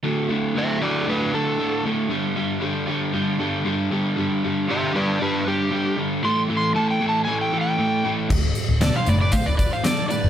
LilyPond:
<<
  \new Staff \with { instrumentName = "Electric slide guitar" } { \time 4/4 \key g \major \tempo 4 = 116 r4 <c'' e''>8 <fis' d''>8 <d' b'>8 a'4 r8 | r1 | r4 <g' e''>8 <b' d''>8 <g' b'>8 g'4 r8 | \tuplet 3/2 { c'''8 r8 c'''8 a''8 g''8 a''8 gis''8 g''8 g''8~ } g''8. r16 |
r4 d''16 f''16 d''16 d''16 f''16 d''16 d''16 f''16 d''8 d''8 | }
  \new Staff \with { instrumentName = "Lead electric guitar" } { \time 4/4 \key g \major r1 | r1 | r1 | r1 |
r4 a'16 c''16 b'16 b'16 c''16 b'16 b'16 c''16 a'8 b'8 | }
  \new Staff \with { instrumentName = "Overdriven electric guitar" } { \clef bass \time 4/4 \key g \major <d, a, d>8 <d, a, d>8 <d, a, d>8 <d, a, d>8 <d, a, d>8 <d, a, d>8 <d, a, d>8 <d, a, d>8 | <g, d g>8 <g, d g>8 <g, d g>8 <g, d g>8 <g, d g>8 <g, d g>8 <g, d g>8 <g, d g>8 | <g, d g>8 <g, d g>8 <g, d g>8 <g, d g>8 <g, d g>8 <g, d g>8 <g, d g>8 <g, d g>8 | <a, e a>8 <a, e a>8 <a, e a>8 <a, e a>8 <a, e a>8 <a, e a>8 <a, e a>8 <a, e a>8 |
<d, a,>4 <d, b,>8 <d, a,>8 <d, a,>4 <d, b,>8 <d, a,>8 | }
  \new Staff \with { instrumentName = "Picked electric bass" } { \clef bass \time 4/4 \key g \major r1 | r1 | r1 | r1 |
d,,8 r16 d,,8 r16 fis,,8 r16 d,,8 r4 fis,,16 | }
  \new DrumStaff \with { instrumentName = "Drums" } \drummode { \time 4/4 r4 r4 r4 r4 | r4 r4 r4 r4 | r4 r4 r4 r4 | r4 r4 r4 r4 |
<cymc bd>8 hh8 <hh sn>8 hh8 <hh bd>8 <hh bd>8 <hh sn>8 hh8 | }
>>